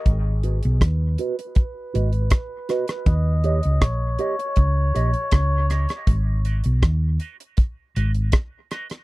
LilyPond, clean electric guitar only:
\new Staff \with { instrumentName = "Clean electric guitar" } { \time 4/4 \key gis \minor \tempo 4 = 80 r8 <fis' b' dis''>8 r8 <fis' b' dis''>8 r8 <fis' b' dis''>8 r8 <fis' b' dis''>8 | r8 <g' cis'' dis''>8 r8 <g' cis'' dis''>8 r8 <g' cis'' dis''>8 r8 <g' cis'' dis''>8 | r8 <fis' b' dis''>8 r8 <fis' b' dis''>8 r8 <fis' b' dis''>8 r8 <fis' b' dis''>8 | }